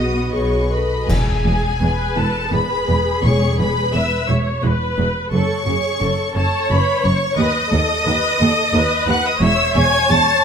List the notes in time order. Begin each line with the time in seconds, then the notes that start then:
Already playing: B1 B3 F#4 B4 D#5 D#6
0.32 B1 G#4 C#5 C#6
0.70 F#4 A4 B4 D#5 B5
1.08 E1 E2 G#4 G#5, concert bass drum, crash
1.45 E1 E2
1.81 E1 E2 B4
2.15 E1 E2 A4 A5
2.52 E1 E2 G#4 B4 B5
2.88 E1 E2
3.22 E1 E2 C#5 C#6
3.59 E1 E2 B4 B5
3.94 E1 E2 B4 E5 E6
4.29 E1 E2 C#5
4.63 E1 E2 B4
4.98 E1 E2
5.31 F#1 F#2 A4 C#5 C#6
5.66 F#1 F#2 G#4
6.00 F#1 F#2 A4
6.34 F#1 F#2 A4 C#5 A5
6.69 F#1 F#2 B4 B5
7.04 F#1 F#2 C#5 C#6
7.37 D#2 B4 D#5 D#6
7.72 D#2 A4
8.06 D#2 B4
8.41 D#2 A4
8.74 D#2 B4
9.07 D#2 F#5 F#6
9.26 D#5 D#6
9.41 E1 E2 C#5 E5 E6
9.76 E1 E2 G#5 G#6
10.10 E1 E2 A5 A6